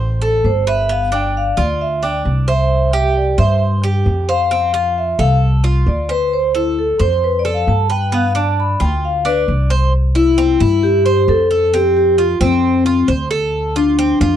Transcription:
Already playing: upright bass A1, cuban tres C5
0.22 cuban tres A4, vibraphone A4
0.44 upright bass G1, vibraphone C5
0.67 cuban tres B4, vibraphone E5
0.89 cuban tres B3
1.12 cuban tres D4, vibraphone G5
1.37 vibraphone F5
1.57 upright bass D2, cuban tres F4, vibraphone D5
1.81 vibraphone E5
2.03 cuban tres D4, vibraphone G5
2.25 upright bass C2
2.48 cuban tres C5, vibraphone E5
2.93 cuban tres G4
3.17 vibraphone D5
3.38 upright bass G2, cuban tres C5, vibraphone E5
3.83 cuban tres G4
4.06 upright bass F2
4.29 cuban tres C5, vibraphone F5
4.51 cuban tres C4
4.74 cuban tres F4
4.98 vibraphone E5
5.19 upright bass C2, cuban tres A4, vibraphone F5
5.64 cuban tres F4
5.86 upright bass D2, vibraphone D5
6.09 vibraphone B4, cuban tres C5
6.33 vibraphone C5
6.55 vibraphone E4, cuban tres A4
6.79 vibraphone A4
6.99 upright bass F2, cuban tres C5, vibraphone C5
7.24 vibraphone B4
7.39 vibraphone D5
7.45 cuban tres A4
7.54 vibraphone F5
7.67 upright bass G2, vibraphone A5
7.90 cuban tres B4, vibraphone G5
8.12 cuban tres B3, vibraphone F5
8.35 cuban tres D4, vibraphone A5
8.60 vibraphone B5
8.80 upright bass D2, cuban tres F4, vibraphone G5
9.05 vibraphone F5
9.25 cuban tres D4, vibraphone B4
9.48 upright bass C2
9.70 cuban tres C5
10.15 cuban tres E4, vibraphone E4
10.38 cuban tres C4
10.60 upright bass G2, cuban tres E4
10.83 vibraphone G4
11.06 cuban tres C5
11.28 upright bass F2, vibraphone A4
11.51 cuban tres A4
11.74 cuban tres C4, vibraphone G4
11.97 vibraphone G4
12.18 cuban tres F4, vibraphone F4
12.41 upright bass F2, cuban tres C4, vibraphone C4
12.86 cuban tres F4
13.08 upright bass D2, cuban tres C5
13.31 cuban tres A4
13.76 vibraphone D4, cuban tres F4
13.99 cuban tres C4
14.21 upright bass F2, cuban tres F4

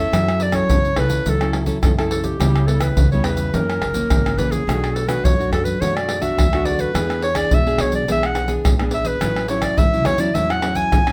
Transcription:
Already playing: nylon-string guitar C#4 E4 A4, clarinet E5
0.12 upright bass F#2, nylon-string guitar F#3, pandeiro, tamborim, shaker, surdo
0.28 pandeiro, tamborim, shaker
0.40 clarinet D5, pandeiro, shaker
0.52 nylon-string guitar C#4 E4 A4, clarinet C#5, pandeiro, tamborim, shaker, surdo
0.69 upright bass F#2, nylon-string guitar C#3, pandeiro, shaker, surdo
0.85 pandeiro, shaker
0.96 upright bass C#2, nylon-string guitar C#4 E4 A4, clarinet B4, pandeiro, tamborim
1.10 pandeiro, shaker, surdo
1.26 upright bass C#2, nylon-string guitar F#3, clarinet A4, pandeiro, shaker, surdo
1.41 nylon-string guitar C#4 E4 A4, pandeiro, tamborim, shaker
1.53 pandeiro, tamborim
1.66 nylon-string guitar C#4 E4 A4, pandeiro, shaker, surdo
1.83 upright bass F#2, nylon-string guitar C#3 C#4 E4 A4, pandeiro, tamborim, shaker, surdo
1.99 nylon-string guitar C#4 E4 A4, pandeiro, tamborim, shaker
2.11 clarinet A4, pandeiro
2.24 clarinet G4, pandeiro, shaker, surdo
2.40 upright bass C#2, nylon-string guitar C#3 G3 B3 E4, pandeiro, tamborim, shaker, surdo
2.56 pandeiro, tamborim, shaker
2.67 nylon-string guitar G3 B3 E4, clarinet A4, pandeiro
2.81 clarinet B4, pandeiro, tamborim, shaker, surdo
2.97 upright bass C#2, nylon-string guitar C#3, pandeiro, shaker, surdo
3.12 nylon-string guitar G3 B3 E4, clarinet C#5, pandeiro, shaker
3.24 upright bass E2, clarinet B4, pandeiro, tamborim
3.37 pandeiro, shaker, surdo
3.54 upright bass F#2, nylon-string guitar F#2 E3 A#3 C#4, clarinet A#4, pandeiro, shaker, surdo
3.70 pandeiro, tamborim, shaker
3.81 upright bass F#1, pandeiro, tamborim, surdo
3.94 nylon-string guitar E3 A#3 C#4, pandeiro, shaker, surdo
4.10 upright bass G#1, nylon-string guitar C#3, pandeiro, tamborim, shaker, surdo
4.26 pandeiro, tamborim, shaker
4.38 upright bass A#1, nylon-string guitar E3 A#3 C#4, clarinet B4, pandeiro, shaker
4.51 clarinet G#4, pandeiro, shaker, surdo
4.67 upright bass B1, nylon-string guitar B2 A3 D4 F#4, pandeiro, tamborim, shaker, surdo
4.84 pandeiro, tamborim, shaker
4.95 clarinet A4, pandeiro
5.08 nylon-string guitar A3 D4 F#4, clarinet B4, pandeiro, tamborim, shaker, surdo
5.24 upright bass B1, nylon-string guitar F#2, clarinet C#5, pandeiro, shaker, surdo
5.39 nylon-string guitar A3 D4 F#4, pandeiro, shaker
5.52 upright bass F#2, clarinet A4, pandeiro, tamborim
5.64 clarinet B4, pandeiro, shaker, surdo
5.81 upright bass F#2, nylon-string guitar B2 A3 D4 F#4, clarinet C#5, pandeiro, shaker, surdo
5.96 clarinet D5, pandeiro, tamborim, shaker
6.09 pandeiro, tamborim
6.21 nylon-string guitar A3 D4 F#4, clarinet E5, pandeiro, shaker, surdo
6.37 upright bass D2, nylon-string guitar F#2, pandeiro, tamborim, shaker, surdo
6.53 nylon-string guitar A3 D4 F#4, pandeiro, tamborim, shaker
6.65 clarinet D5, pandeiro
6.79 clarinet B4, pandeiro, shaker, surdo
6.94 upright bass E2, nylon-string guitar E3 B3 D4 G#4, pandeiro, tamborim, shaker, surdo
7.10 pandeiro, tamborim, shaker
7.22 clarinet C#5, pandeiro
7.35 nylon-string guitar B3 D4 G#4, clarinet D5, pandeiro, tamborim, shaker, surdo
7.51 upright bass E2, nylon-string guitar B2, clarinet E5, pandeiro, shaker, surdo
7.66 nylon-string guitar B3 D4 G#4, pandeiro, shaker
7.78 upright bass B1, clarinet C#5, pandeiro, tamborim
7.92 clarinet D5, pandeiro, shaker, surdo
8.08 upright bass B1, nylon-string guitar E3 B3 D4 G#4, clarinet E5, pandeiro, shaker, surdo
8.23 clarinet F#5, pandeiro, tamborim, shaker
8.35 pandeiro, tamborim, shaker, surdo
8.47 nylon-string guitar B3 D4 G#4, pandeiro, shaker, surdo
8.65 upright bass A#1, pandeiro, tamborim, shaker, surdo
8.79 nylon-string guitar B3 D4 G#4, pandeiro, tamborim, shaker
8.91 clarinet E5, pandeiro
9.05 clarinet B4, pandeiro, shaker, surdo
9.21 upright bass A1, nylon-string guitar A2 F#3 C#4 E4, pandeiro, tamborim, shaker, surdo
9.36 pandeiro, tamborim, shaker
9.48 nylon-string guitar F#3 C#4 E4, clarinet C#5, pandeiro, shaker
9.62 clarinet D5, pandeiro, tamborim, shaker, surdo
9.78 upright bass A1, nylon-string guitar E3, clarinet E5, pandeiro, shaker, surdo
9.93 nylon-string guitar F#3 C#4 E4, pandeiro, shaker
10.05 upright bass E2, clarinet C#5, pandeiro, tamborim, shaker
10.18 nylon-string guitar F#3 C#4 E4, clarinet D5, pandeiro, shaker, surdo
10.35 upright bass E2, nylon-string guitar A2 F#3 C#4 E4, clarinet E5, pandeiro, shaker, surdo
10.50 clarinet F#5, pandeiro, tamborim, shaker
10.62 nylon-string guitar F#3 C#4 E4, pandeiro, tamborim
10.75 clarinet G#5, pandeiro, shaker, surdo
10.92 upright bass A1, nylon-string guitar E3, pandeiro, tamborim, shaker, surdo
11.07 nylon-string guitar F#3 C#4 E4, pandeiro, tamborim, shaker

